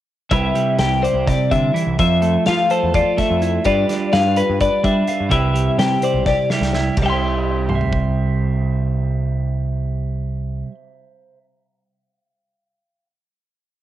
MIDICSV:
0, 0, Header, 1, 5, 480
1, 0, Start_track
1, 0, Key_signature, 0, "major"
1, 0, Tempo, 476190
1, 328, Time_signature, 7, 3, 24, 8
1, 13940, End_track
2, 0, Start_track
2, 0, Title_t, "Clean electric guitar"
2, 0, Program_c, 0, 27
2, 314, Note_on_c, 0, 76, 67
2, 796, Note_off_c, 0, 76, 0
2, 800, Note_on_c, 0, 79, 68
2, 1037, Note_on_c, 0, 72, 64
2, 1045, Note_off_c, 0, 79, 0
2, 1288, Note_off_c, 0, 72, 0
2, 1288, Note_on_c, 0, 74, 74
2, 1525, Note_on_c, 0, 76, 56
2, 1529, Note_off_c, 0, 74, 0
2, 2002, Note_off_c, 0, 76, 0
2, 2014, Note_on_c, 0, 76, 74
2, 2483, Note_off_c, 0, 76, 0
2, 2487, Note_on_c, 0, 77, 68
2, 2729, Note_off_c, 0, 77, 0
2, 2731, Note_on_c, 0, 72, 68
2, 2971, Note_off_c, 0, 72, 0
2, 2975, Note_on_c, 0, 74, 77
2, 3208, Note_on_c, 0, 76, 59
2, 3212, Note_off_c, 0, 74, 0
2, 3688, Note_off_c, 0, 76, 0
2, 3689, Note_on_c, 0, 74, 75
2, 4163, Note_on_c, 0, 77, 70
2, 4168, Note_off_c, 0, 74, 0
2, 4405, Note_off_c, 0, 77, 0
2, 4408, Note_on_c, 0, 71, 67
2, 4642, Note_off_c, 0, 71, 0
2, 4646, Note_on_c, 0, 74, 74
2, 4881, Note_on_c, 0, 76, 61
2, 4886, Note_off_c, 0, 74, 0
2, 5346, Note_off_c, 0, 76, 0
2, 5358, Note_on_c, 0, 76, 78
2, 5836, Note_off_c, 0, 76, 0
2, 5840, Note_on_c, 0, 79, 68
2, 6080, Note_off_c, 0, 79, 0
2, 6081, Note_on_c, 0, 72, 62
2, 6312, Note_off_c, 0, 72, 0
2, 6316, Note_on_c, 0, 74, 74
2, 6554, Note_off_c, 0, 74, 0
2, 6554, Note_on_c, 0, 76, 55
2, 7035, Note_off_c, 0, 76, 0
2, 7079, Note_on_c, 0, 76, 57
2, 7115, Note_on_c, 0, 79, 53
2, 7149, Note_off_c, 0, 79, 0
2, 7153, Note_on_c, 0, 84, 57
2, 10799, Note_off_c, 0, 76, 0
2, 10833, Note_off_c, 0, 84, 0
2, 13940, End_track
3, 0, Start_track
3, 0, Title_t, "Clean electric guitar"
3, 0, Program_c, 1, 27
3, 313, Note_on_c, 1, 48, 61
3, 321, Note_on_c, 1, 55, 46
3, 325, Note_on_c, 1, 64, 53
3, 331, Note_on_c, 1, 71, 58
3, 335, Note_on_c, 1, 67, 52
3, 545, Note_off_c, 1, 55, 0
3, 557, Note_on_c, 1, 55, 55
3, 802, Note_off_c, 1, 67, 0
3, 814, Note_on_c, 1, 67, 51
3, 1047, Note_off_c, 1, 71, 0
3, 1051, Note_on_c, 1, 74, 46
3, 1264, Note_off_c, 1, 48, 0
3, 1276, Note_on_c, 1, 48, 56
3, 1524, Note_off_c, 1, 48, 0
3, 1526, Note_on_c, 1, 50, 54
3, 1752, Note_off_c, 1, 50, 0
3, 1756, Note_on_c, 1, 52, 52
3, 1981, Note_off_c, 1, 64, 0
3, 1983, Note_off_c, 1, 74, 0
3, 1984, Note_off_c, 1, 67, 0
3, 2004, Note_off_c, 1, 52, 0
3, 2005, Note_off_c, 1, 55, 0
3, 2008, Note_on_c, 1, 53, 63
3, 2237, Note_on_c, 1, 57, 50
3, 2502, Note_on_c, 1, 65, 54
3, 2729, Note_on_c, 1, 69, 51
3, 2962, Note_off_c, 1, 65, 0
3, 2974, Note_on_c, 1, 65, 55
3, 3186, Note_off_c, 1, 57, 0
3, 3198, Note_on_c, 1, 57, 58
3, 3446, Note_on_c, 1, 64, 51
3, 3655, Note_off_c, 1, 57, 0
3, 3659, Note_off_c, 1, 53, 0
3, 3659, Note_off_c, 1, 64, 0
3, 3662, Note_off_c, 1, 65, 0
3, 3680, Note_on_c, 1, 55, 63
3, 3688, Note_off_c, 1, 69, 0
3, 3690, Note_on_c, 1, 62, 50
3, 3694, Note_on_c, 1, 65, 56
3, 3700, Note_on_c, 1, 71, 63
3, 3910, Note_off_c, 1, 62, 0
3, 3922, Note_on_c, 1, 62, 50
3, 4155, Note_off_c, 1, 71, 0
3, 4159, Note_on_c, 1, 71, 53
3, 4399, Note_off_c, 1, 71, 0
3, 4403, Note_on_c, 1, 71, 54
3, 4645, Note_off_c, 1, 71, 0
3, 4649, Note_on_c, 1, 71, 61
3, 4865, Note_off_c, 1, 62, 0
3, 4877, Note_on_c, 1, 62, 57
3, 5110, Note_off_c, 1, 65, 0
3, 5122, Note_on_c, 1, 65, 49
3, 5331, Note_off_c, 1, 62, 0
3, 5331, Note_on_c, 1, 48, 64
3, 5334, Note_off_c, 1, 65, 0
3, 5342, Note_off_c, 1, 55, 0
3, 5346, Note_on_c, 1, 55, 57
3, 5351, Note_on_c, 1, 64, 56
3, 5362, Note_off_c, 1, 71, 0
3, 5362, Note_on_c, 1, 67, 52
3, 5366, Note_on_c, 1, 71, 59
3, 5569, Note_off_c, 1, 55, 0
3, 5581, Note_on_c, 1, 55, 54
3, 5828, Note_off_c, 1, 67, 0
3, 5840, Note_on_c, 1, 67, 50
3, 6083, Note_off_c, 1, 71, 0
3, 6091, Note_on_c, 1, 74, 50
3, 6319, Note_off_c, 1, 67, 0
3, 6333, Note_on_c, 1, 67, 53
3, 6549, Note_off_c, 1, 55, 0
3, 6574, Note_on_c, 1, 55, 52
3, 6790, Note_off_c, 1, 64, 0
3, 6802, Note_on_c, 1, 64, 47
3, 6993, Note_off_c, 1, 48, 0
3, 7011, Note_off_c, 1, 64, 0
3, 7014, Note_off_c, 1, 74, 0
3, 7016, Note_off_c, 1, 67, 0
3, 7035, Note_on_c, 1, 48, 56
3, 7075, Note_off_c, 1, 55, 0
3, 7087, Note_on_c, 1, 55, 57
3, 7138, Note_on_c, 1, 64, 52
3, 7184, Note_on_c, 1, 67, 49
3, 7752, Note_off_c, 1, 64, 0
3, 7756, Note_on_c, 1, 72, 54
3, 7810, Note_off_c, 1, 67, 0
3, 7814, Note_on_c, 1, 76, 54
3, 10755, Note_off_c, 1, 48, 0
3, 10807, Note_off_c, 1, 55, 0
3, 11476, Note_off_c, 1, 72, 0
3, 11534, Note_off_c, 1, 76, 0
3, 13940, End_track
4, 0, Start_track
4, 0, Title_t, "Fingered electric bass"
4, 0, Program_c, 2, 33
4, 317, Note_on_c, 2, 36, 79
4, 505, Note_off_c, 2, 36, 0
4, 793, Note_on_c, 2, 36, 79
4, 1074, Note_off_c, 2, 36, 0
4, 1147, Note_on_c, 2, 36, 76
4, 1339, Note_off_c, 2, 36, 0
4, 1527, Note_on_c, 2, 48, 80
4, 1711, Note_off_c, 2, 48, 0
4, 1882, Note_on_c, 2, 36, 71
4, 1977, Note_off_c, 2, 36, 0
4, 2008, Note_on_c, 2, 41, 80
4, 2375, Note_off_c, 2, 41, 0
4, 2501, Note_on_c, 2, 53, 76
4, 2680, Note_off_c, 2, 53, 0
4, 2854, Note_on_c, 2, 40, 72
4, 3035, Note_off_c, 2, 40, 0
4, 3330, Note_on_c, 2, 41, 76
4, 3604, Note_off_c, 2, 41, 0
4, 3680, Note_on_c, 2, 43, 75
4, 3866, Note_off_c, 2, 43, 0
4, 4168, Note_on_c, 2, 43, 79
4, 4442, Note_off_c, 2, 43, 0
4, 4531, Note_on_c, 2, 43, 87
4, 4712, Note_off_c, 2, 43, 0
4, 4873, Note_on_c, 2, 55, 86
4, 5060, Note_off_c, 2, 55, 0
4, 5246, Note_on_c, 2, 43, 70
4, 5336, Note_off_c, 2, 43, 0
4, 5356, Note_on_c, 2, 36, 85
4, 5724, Note_off_c, 2, 36, 0
4, 5828, Note_on_c, 2, 48, 81
4, 6016, Note_off_c, 2, 48, 0
4, 6185, Note_on_c, 2, 35, 72
4, 6373, Note_off_c, 2, 35, 0
4, 6660, Note_on_c, 2, 36, 70
4, 6941, Note_off_c, 2, 36, 0
4, 7025, Note_on_c, 2, 36, 76
4, 10705, Note_off_c, 2, 36, 0
4, 13940, End_track
5, 0, Start_track
5, 0, Title_t, "Drums"
5, 312, Note_on_c, 9, 42, 65
5, 316, Note_on_c, 9, 36, 88
5, 413, Note_off_c, 9, 42, 0
5, 417, Note_off_c, 9, 36, 0
5, 559, Note_on_c, 9, 42, 52
5, 660, Note_off_c, 9, 42, 0
5, 792, Note_on_c, 9, 42, 68
5, 796, Note_on_c, 9, 38, 87
5, 893, Note_off_c, 9, 42, 0
5, 897, Note_off_c, 9, 38, 0
5, 1053, Note_on_c, 9, 42, 56
5, 1154, Note_off_c, 9, 42, 0
5, 1285, Note_on_c, 9, 36, 83
5, 1289, Note_on_c, 9, 42, 69
5, 1293, Note_on_c, 9, 38, 28
5, 1386, Note_off_c, 9, 36, 0
5, 1390, Note_off_c, 9, 42, 0
5, 1394, Note_off_c, 9, 38, 0
5, 1528, Note_on_c, 9, 36, 72
5, 1532, Note_on_c, 9, 42, 55
5, 1629, Note_off_c, 9, 36, 0
5, 1633, Note_off_c, 9, 42, 0
5, 1775, Note_on_c, 9, 42, 51
5, 1875, Note_off_c, 9, 42, 0
5, 2005, Note_on_c, 9, 42, 66
5, 2006, Note_on_c, 9, 36, 90
5, 2106, Note_off_c, 9, 42, 0
5, 2107, Note_off_c, 9, 36, 0
5, 2240, Note_on_c, 9, 42, 56
5, 2340, Note_off_c, 9, 42, 0
5, 2478, Note_on_c, 9, 42, 64
5, 2482, Note_on_c, 9, 38, 85
5, 2579, Note_off_c, 9, 42, 0
5, 2583, Note_off_c, 9, 38, 0
5, 2722, Note_on_c, 9, 42, 52
5, 2823, Note_off_c, 9, 42, 0
5, 2964, Note_on_c, 9, 42, 67
5, 2967, Note_on_c, 9, 36, 89
5, 3065, Note_off_c, 9, 42, 0
5, 3067, Note_off_c, 9, 36, 0
5, 3206, Note_on_c, 9, 42, 55
5, 3208, Note_on_c, 9, 36, 67
5, 3210, Note_on_c, 9, 38, 29
5, 3307, Note_off_c, 9, 42, 0
5, 3309, Note_off_c, 9, 36, 0
5, 3311, Note_off_c, 9, 38, 0
5, 3446, Note_on_c, 9, 42, 49
5, 3546, Note_off_c, 9, 42, 0
5, 3673, Note_on_c, 9, 42, 62
5, 3684, Note_on_c, 9, 36, 87
5, 3774, Note_off_c, 9, 42, 0
5, 3785, Note_off_c, 9, 36, 0
5, 3924, Note_on_c, 9, 42, 50
5, 3928, Note_on_c, 9, 38, 31
5, 4024, Note_off_c, 9, 42, 0
5, 4028, Note_off_c, 9, 38, 0
5, 4161, Note_on_c, 9, 42, 64
5, 4165, Note_on_c, 9, 38, 83
5, 4261, Note_off_c, 9, 42, 0
5, 4265, Note_off_c, 9, 38, 0
5, 4399, Note_on_c, 9, 42, 55
5, 4499, Note_off_c, 9, 42, 0
5, 4641, Note_on_c, 9, 42, 69
5, 4643, Note_on_c, 9, 36, 88
5, 4741, Note_off_c, 9, 42, 0
5, 4744, Note_off_c, 9, 36, 0
5, 4880, Note_on_c, 9, 36, 71
5, 4883, Note_on_c, 9, 42, 52
5, 4981, Note_off_c, 9, 36, 0
5, 4984, Note_off_c, 9, 42, 0
5, 5115, Note_on_c, 9, 42, 51
5, 5215, Note_off_c, 9, 42, 0
5, 5352, Note_on_c, 9, 42, 66
5, 5357, Note_on_c, 9, 36, 87
5, 5453, Note_off_c, 9, 42, 0
5, 5457, Note_off_c, 9, 36, 0
5, 5600, Note_on_c, 9, 42, 51
5, 5701, Note_off_c, 9, 42, 0
5, 5836, Note_on_c, 9, 42, 66
5, 5840, Note_on_c, 9, 38, 84
5, 5937, Note_off_c, 9, 42, 0
5, 5941, Note_off_c, 9, 38, 0
5, 6070, Note_on_c, 9, 42, 58
5, 6171, Note_off_c, 9, 42, 0
5, 6306, Note_on_c, 9, 38, 47
5, 6311, Note_on_c, 9, 36, 84
5, 6407, Note_off_c, 9, 38, 0
5, 6412, Note_off_c, 9, 36, 0
5, 6552, Note_on_c, 9, 38, 63
5, 6653, Note_off_c, 9, 38, 0
5, 6672, Note_on_c, 9, 38, 53
5, 6772, Note_off_c, 9, 38, 0
5, 6789, Note_on_c, 9, 38, 64
5, 6889, Note_off_c, 9, 38, 0
5, 7024, Note_on_c, 9, 49, 71
5, 7028, Note_on_c, 9, 36, 82
5, 7125, Note_off_c, 9, 49, 0
5, 7129, Note_off_c, 9, 36, 0
5, 7751, Note_on_c, 9, 47, 51
5, 7852, Note_off_c, 9, 47, 0
5, 7872, Note_on_c, 9, 43, 60
5, 7973, Note_off_c, 9, 43, 0
5, 7990, Note_on_c, 9, 36, 71
5, 8091, Note_off_c, 9, 36, 0
5, 13940, End_track
0, 0, End_of_file